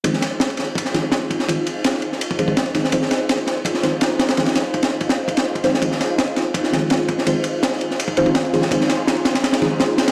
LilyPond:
<<
  \new Staff \with { instrumentName = "String machine" } { \time 4/4 \key f \minor \tempo 4 = 166 <ees' f' aes' c''>4.~ <ees' f' aes' c''>16 <ees' f' aes' c''>2~ <ees' f' aes' c''>16 | <ees' f' aes' c''>4.~ <ees' f' aes' c''>16 <ees' f' aes' c''>2~ <ees' f' aes' c''>16 | <ees' f' aes' c''>4.~ <ees' f' aes' c''>16 <ees' f' aes' c''>2~ <ees' f' aes' c''>16 | <ees' f' aes' c''>4.~ <ees' f' aes' c''>16 <ees' f' aes' c''>2~ <ees' f' aes' c''>16 |
<ees' f' aes' c''>4.~ <ees' f' aes' c''>16 <ees' f' aes' c''>2~ <ees' f' aes' c''>16 | <ees' f' aes' c''>4.~ <ees' f' aes' c''>16 <ees' f' aes' c''>2~ <ees' f' aes' c''>16 | <ees' f' aes' c''>4.~ <ees' f' aes' c''>16 <ees' f' aes' c''>2~ <ees' f' aes' c''>16 | }
  \new Staff \with { instrumentName = "Synth stab" } { \time 4/4 \key f \minor <ees' f' aes' c''>16 r2 r16 <ees' f' aes' c''>4. | <ees' f' aes' c''>16 r2 r16 <ees' f' aes' c''>16 <ees' f' aes' c''>16 r8 <ees' f' aes' c''>16 r16 | <ees' f' aes' c''>16 r2 r16 <ees' f' aes' c''>4. | <ees' f' aes' c''>16 r2. r16 <ees' f' aes' c''>16 r16 |
<ees' f' aes' c''>16 r2 r16 <ees' f' aes' c''>4. | <ees' f' aes' c''>16 r2 r16 <ees' f' aes' c''>16 <ees' f' aes' c''>16 r8 <ees' f' aes' c''>16 r16 | <ees' f' aes' c''>16 r2 r16 <ees' f' aes' c''>4. | }
  \new DrumStaff \with { instrumentName = "Drums" } \drummode { \time 4/4 <bd cymr>16 sn16 <cymr sn>8 <cymr sn>16 cymr16 <cymr sn>8 <bd cymr>16 sn16 <cymr sn>8 <cymr sn>8 <bd cymr>16 sn16 | <bd cymr>8 cymr8 <cymr sn>16 sn16 cymr16 sn16 cymr16 bd16 cymr16 bd16 <cymr sn>16 cymr16 <cymr sn>16 sn16 | <bd cymr>16 sn16 <cymr sn>8 <cymr sn>16 cymr16 <cymr sn>8 <bd cymr>16 sn16 <cymr sn>8 <cymr sn>8 <cymr sn>16 <cymr sn>16 | <cymr sn>16 <cymr sn>16 <cymr sn>8 <bd cymr>16 <cymr sn>8 <bd cymr>16 <cymr sn>8 <bd cymr>16 <cymr sn>16 r16 <bd cymr>16 <cymr sn>16 sn16 |
<bd cymr>16 sn16 <cymr sn>8 <cymr sn>16 cymr16 <cymr sn>8 <bd cymr>16 sn16 <cymr sn>8 <cymr sn>8 <bd cymr>16 sn16 | <bd cymr>8 cymr8 <cymr sn>16 sn16 cymr16 sn16 cymr16 bd16 cymr16 bd16 <cymr sn>16 cymr16 <cymr sn>16 sn16 | <bd cymr>16 sn16 <cymr sn>8 <cymr sn>16 cymr16 <cymr sn>16 <cymr sn>16 <cymr sn>16 <cymr sn>16 <cymr sn>8 <cymr sn>8 <cymr sn>16 <cymr sn>16 | }
>>